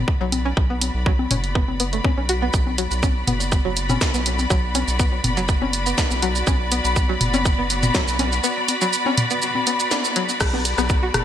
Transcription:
0.00 11.24 B3 medium
0.00 11.24 F#4 medium
0.00 11.24 D5 medium
0.00 11.24 B5 medium
0.08 kick loud
0.21 0.53 B1 medium
0.21 0.25 F#3 loud
0.32 open hi-hat medium
0.32 high conga medium
0.45 0.50 C#4 medium
0.57 0.91 B1 loud
0.57 kick loud
0.70 0.77 B3 medium
0.81 open hi-hat medium
0.81 high conga soft
0.95 1.27 B1 loud
1.06 1.11 F#3 loud
1.06 kick loud
1.19 high conga medium
1.31 1.64 F#1 medium
1.31 1.36 C#4 medium
1.31 mid tom medium
1.31 open hi-hat medium
1.44 open hi-hat soft
1.55 1.63 B3 medium
1.55 kick loud
1.68 2.01 F#1 medium
1.68 high conga soft
1.80 1.85 B3 medium
1.80 open hi-hat medium
1.93 1.97 A3 medium
1.93 open hi-hat soft
2.04 2.10 C#4 medium
2.04 kick loud
2.04 high conga medium
2.17 2.50 B1 medium
2.17 2.20 C#4 medium
2.29 2.34 F#4 loud
2.29 open hi-hat medium
2.42 2.45 B3 loud
2.54 2.87 B1 loud
2.54 kick loud
2.54 shaker soft
2.67 high conga soft
2.78 2.83 F#3 loud
2.78 open hi-hat medium
2.78 shaker soft
2.91 3.24 B1 medium
2.91 shaker soft
3.03 3.08 C#4 medium
3.03 kick loud
3.03 high conga medium
3.03 shaker soft
3.27 3.61 F#1 medium
3.27 3.35 B3 medium
3.27 mid tom medium
3.27 open hi-hat medium
3.40 open hi-hat soft
3.40 shaker soft
3.52 kick loud
3.52 high conga soft
3.52 shaker medium
3.65 3.98 F#1 medium
3.65 3.70 F#3 loud
3.77 open hi-hat medium
3.77 shaker soft
3.90 3.94 C#4 medium
3.90 mid tom medium
3.90 open hi-hat soft
3.90 high conga medium
3.90 shaker soft
4.01 kick loud
4.01 snare loud
4.01 shaker medium
4.14 4.47 B1 medium
4.14 4.21 B3 medium
4.14 shaker soft
4.26 open hi-hat medium
4.39 high conga soft
4.39 shaker soft
4.50 4.84 B1 loud
4.50 4.55 F#3 loud
4.50 kick loud
4.50 shaker medium
4.75 4.80 C#4 medium
4.75 open hi-hat medium
4.75 high conga medium
4.75 shaker soft
4.88 5.21 B1 loud
4.88 shaker soft
5.00 5.07 B3 medium
5.00 kick loud
5.00 shaker medium
5.24 5.58 F#1 medium
5.24 mid tom medium
5.24 open hi-hat medium
5.24 high conga soft
5.37 5.42 F#3 loud
5.37 open hi-hat soft
5.37 shaker soft
5.49 kick loud
5.49 shaker soft
5.62 5.94 F#1 medium
5.62 5.66 C#4 medium
5.62 high conga medium
5.73 open hi-hat medium
5.73 shaker soft
5.86 5.93 B3 medium
5.86 open hi-hat soft
5.86 shaker soft
5.98 kick loud
5.98 snare loud
5.98 shaker medium
6.11 6.44 B1 medium
6.11 high conga soft
6.11 shaker soft
6.22 6.28 F#3 loud
6.22 open hi-hat medium
6.36 shaker soft
6.47 6.81 B1 loud
6.47 6.52 C#4 medium
6.47 kick loud
6.47 high conga medium
6.47 shaker medium
6.72 6.79 B3 medium
6.72 open hi-hat medium
6.72 shaker soft
6.85 7.17 B1 medium
6.85 shaker soft
6.96 kick loud
6.96 high conga soft
6.96 shaker medium
7.09 7.14 F#3 loud
7.21 7.55 F#1 medium
7.21 mid tom medium
7.21 open hi-hat medium
7.34 7.38 C#4 medium
7.34 open hi-hat soft
7.34 high conga medium
7.34 shaker soft
7.45 kick loud
7.45 shaker medium
7.59 7.91 F#1 medium
7.59 7.65 B3 medium
7.70 open hi-hat medium
7.70 shaker soft
7.83 mid tom medium
7.83 open hi-hat soft
7.83 high conga soft
7.83 shaker soft
7.95 8.00 F#3 loud
7.95 kick loud
7.95 snare loud
7.95 shaker medium
8.08 8.40 B1 medium
8.08 shaker soft
8.19 8.24 C#4 medium
8.19 open hi-hat medium
8.19 high conga medium
8.32 shaker soft
8.44 8.51 B3 medium
8.44 shaker medium
8.68 open hi-hat medium
8.68 high conga soft
8.68 shaker soft
8.81 8.86 F#3 loud
8.81 shaker soft
8.93 shaker medium
9.06 9.11 C#4 medium
9.06 high conga medium
9.18 mid tom medium
9.18 open hi-hat medium
9.31 9.37 B3 medium
9.31 open hi-hat soft
9.31 shaker soft
9.42 shaker medium
9.55 high conga soft
9.67 9.72 B3 medium
9.67 open hi-hat medium
9.67 shaker soft
9.80 open hi-hat soft
9.80 shaker soft
9.91 9.96 D4 medium
9.91 snare loud
9.91 high conga medium
9.91 shaker medium
10.04 shaker soft
10.16 10.24 F#3 loud
10.16 open hi-hat medium
10.29 shaker soft
10.41 10.74 B1 loud
10.41 kick loud
10.41 cross-stick medium
10.41 crash loud
10.41 shaker medium
10.54 10.60 B3 medium
10.54 high conga medium
10.65 open hi-hat medium
10.65 shaker soft
10.78 11.11 B1 medium
10.78 10.81 B3 loud
10.78 cross-stick soft
10.78 shaker soft
10.90 kick loud
10.90 shaker medium
11.03 11.07 F#4 medium
11.14 11.24 F#1 medium
11.14 cross-stick medium
11.14 mid tom loud
11.14 open hi-hat medium

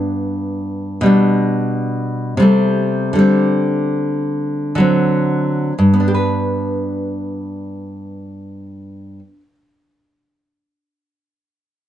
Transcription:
0.00 1.01 G2 medium
0.00 1.02 B3 medium
0.00 1.03 D4 medium
1.01 2.37 B2 medium
1.01 2.39 G3 medium
1.06 2.41 D4 medium
2.37 3.13 C3 medium
2.37 3.13 G3 medium
2.42 3.15 A3 soft
3.13 4.74 D3 medium
3.13 4.78 G3 soft
3.19 4.79 C4 medium
4.75 5.72 D3 medium
4.75 5.73 F#3 soft
4.80 5.74 C4 soft
5.79 9.19 G2 soft
5.93 9.34 B3 soft
6.00 9.40 D4 soft
6.08 6.14 G4 soft
6.14 9.55 B4 soft

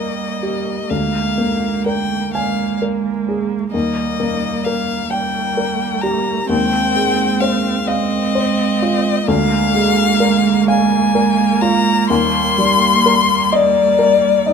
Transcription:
0.00 0.86 D#2 soft
0.00 0.87 G3 soft
0.00 0.87 A#3 soft
0.00 0.92 A#3 soft
0.00 0.92 A#4 soft
0.00 0.91 D#5 medium
0.00 0.23 G5 soft
0.43 0.90 G4 soft
0.89 3.70 D2 soft
0.89 2.31 G#3 soft
0.89 2.31 A#3 soft
0.89 1.85 F5 medium
1.38 2.15 A#3 soft
1.86 2.62 A#4 soft
1.86 2.33 G5 medium
2.33 3.71 G#3 soft
2.33 3.71 A#3 soft
2.33 2.80 F5 medium
2.33 3.09 G#5 soft
2.82 3.56 A#4 soft
3.29 3.74 G#4 soft
3.72 6.45 D#2 soft
3.72 5.08 G3 soft
3.72 5.08 A#3 soft
3.72 4.66 D#5 medium
4.20 4.93 A#3 soft
4.64 5.39 A#4 soft
4.64 5.11 F5 medium
5.10 6.47 G3 soft
5.10 6.46 A#3 soft
5.10 6.03 G5 medium
5.10 5.84 G5 soft
5.57 6.31 A#4 soft
6.01 6.50 G4 soft
6.01 6.49 A#5 medium
6.49 9.23 D#2 medium
6.49 7.84 G#3 medium
6.49 7.85 C4 medium
6.49 7.42 G5 medium
6.96 7.69 G#3 soft
7.41 8.16 C5 soft
7.41 7.89 F5 medium
7.87 9.24 G#3 medium
7.87 9.25 C4 medium
7.87 9.29 D#5 medium
7.87 8.63 F5 soft
8.35 9.10 C5 soft
8.82 9.28 F4 soft
9.27 12.06 D2 medium
9.27 12.12 G#3 medium
9.27 14.53 A#3 medium
9.27 10.68 F5 loud
9.75 10.50 G#3 soft
10.20 10.96 A#4 medium
10.68 11.43 F5 medium
10.68 11.63 G#5 medium
11.15 11.90 A#4 soft
11.61 12.10 F4 medium
11.61 12.09 A#5 medium
12.09 14.53 D#2 medium
12.09 14.53 G3 medium
12.09 13.54 C6 loud
12.58 13.33 G3 medium
13.06 13.80 A#4 medium
13.52 14.53 D5 loud
13.52 14.27 D#5 medium
13.99 14.53 A#4 soft
14.46 14.53 D#4 medium

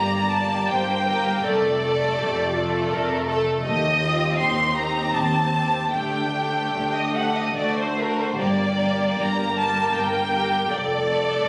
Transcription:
0.00 0.61 G1 soft
0.00 0.60 G2 soft
0.00 0.29 A#3 soft
0.00 0.30 G4 soft
0.00 0.66 D5 soft
0.00 0.30 A#5 medium
0.30 1.06 A#3 soft
0.30 1.06 G4 soft
0.30 0.69 A5 medium
0.69 1.37 G1 soft
0.69 1.37 G2 soft
0.69 1.08 C5 soft
0.69 1.45 G5 medium
1.07 1.44 A#3 soft
1.07 1.45 G4 soft
1.07 1.45 A#4 soft
1.44 2.10 F1 soft
1.44 2.09 F2 medium
1.44 1.80 A3 soft
1.44 2.18 A4 medium
1.44 1.80 A4 soft
1.44 3.28 D5 medium
1.81 2.53 A3 soft
1.81 2.53 A4 soft
2.17 2.84 F1 medium
2.17 2.84 F2 medium
2.17 2.54 G4 medium
2.54 3.27 A3 soft
2.54 2.92 F4 soft
2.54 3.26 A4 soft
2.92 3.58 F1 medium
2.92 3.57 F2 medium
2.92 3.29 A#4 medium
3.27 3.65 A3 soft
3.27 3.65 A4 soft
3.27 3.64 A4 soft
3.64 4.30 D#2 medium
3.64 4.31 D#2 medium
3.64 4.02 G4 medium
3.64 4.34 D#5 medium
4.03 4.75 C4 soft
4.03 4.40 F4 soft
4.03 4.75 G4 soft
4.39 5.06 D#2 soft
4.39 5.16 D#4 soft
4.39 4.77 C6 medium
4.76 5.51 C4 soft
4.76 5.51 G4 soft
4.76 5.14 A#5 medium
5.14 5.83 D#2 soft
5.14 5.94 C4 soft
5.14 5.93 A5 medium
5.52 5.92 C4 soft
5.52 5.91 G4 soft
5.92 6.65 D2 soft
5.92 6.31 A3 soft
5.92 7.94 D4 soft
5.92 6.32 G4 soft
5.92 6.92 G5 medium
6.32 7.13 A3 soft
6.32 7.13 G4 soft
6.74 7.46 D2 soft
6.74 7.47 D2 soft
6.95 7.15 D#5 soft
7.14 7.54 A3 soft
7.14 7.55 G4 soft
7.14 7.35 F#5 soft
7.36 7.56 D#5 soft
7.54 8.29 D2 soft
7.54 7.94 A3 soft
7.54 7.94 F#4 soft
7.54 7.77 D5 soft
7.80 7.99 C5 soft
7.95 8.37 A3 soft
7.95 8.37 F#4 soft
8.01 8.20 A#4 soft
8.20 8.40 C5 soft
8.37 9.09 G1 soft
8.37 9.09 G2 soft
8.37 8.76 A#3 soft
8.37 8.75 G4 soft
8.37 9.18 D5 medium
8.77 9.55 A#3 soft
8.77 9.55 G4 soft
9.17 9.86 G1 soft
9.17 9.86 G2 soft
9.17 10.65 A#4 soft
9.17 9.58 A#5 medium
9.56 10.30 A#3 soft
9.56 10.30 G4 soft
9.56 9.95 A5 medium
9.95 10.60 G1 soft
9.95 10.60 G2 soft
9.95 10.70 G5 medium
10.32 10.68 A#3 soft
10.32 10.69 G4 soft
10.69 11.34 F1 soft
10.69 11.34 F2 soft
10.69 11.43 A4 soft
10.69 11.49 D5 medium
11.07 11.49 A3 soft
11.07 11.49 A4 soft
11.42 11.49 F1 soft
11.42 11.49 F2 soft
11.42 11.49 A#4 medium

